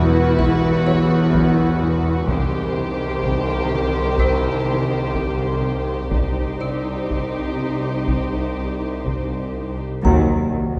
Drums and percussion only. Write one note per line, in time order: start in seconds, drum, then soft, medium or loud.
0.39 taiko medium
1.34 taiko medium
2.28 taiko medium
3.23 taiko medium
4.18 taiko medium
5.14 taiko medium
6.12 taiko medium
7.10 taiko medium
8.08 taiko medium
9.06 taiko medium
10.05 taiko medium